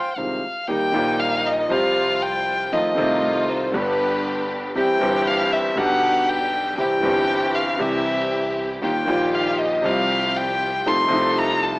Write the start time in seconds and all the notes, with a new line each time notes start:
Already playing: C5 F5 G5
0.16 C2 C3 D#3 G#3 C4 F4 F5
0.68 D#2 D#3 G3 A#3 D#4 G4 G5
0.92 A#1 A#2 D#3 G3 A#3 D#4 G4
1.20 F5
1.46 D#5
1.69 C2 C3 F3 G3 C4 F4 G4 F5
2.22 G5
2.72 F2 D#3 F3 A3 C4 D#4 F4 D#5
2.95 C2 C3 D#3 A3 C4 D#4 F4
3.00 F4
3.49 C5
3.72 G1 G2 D3 G3 B3 D4 G4 B4
4.75 C2 C3 E3 G3 C4 E4 G4 G5
4.99 G1 G2 E3 G3 C4 E4 G4
5.03 G4
5.27 F5
5.53 E5
5.76 B1 B2 D3 G3 B3 D4 G4 F#5
5.80 G4
6.29 G5
6.78 C2 C3 E3 G3 C4 E4 G4 G5
7.01 G1 G2 E3 G3 C4 E4 G4
7.55 F5
7.77 C2 C3 E3 G3 C4 E4 G4 E5
8.82 D#2 D#3 G3 A#3 D#4 F4 G4 G5
9.06 A#1 A#2 D#3 G3 A#3 D#4 F4 G4
9.35 F5
9.59 D#5
9.82 C2 C3 F3 G3 C4 F4 G4
9.86 F5
10.37 G5
10.86 C2 C3 F3 A3 D#4 F4 A4 C6
11.08 C2 C3 F3 A3 D#4 F4 A4
11.13 D#4
11.38 A#5
11.63 A5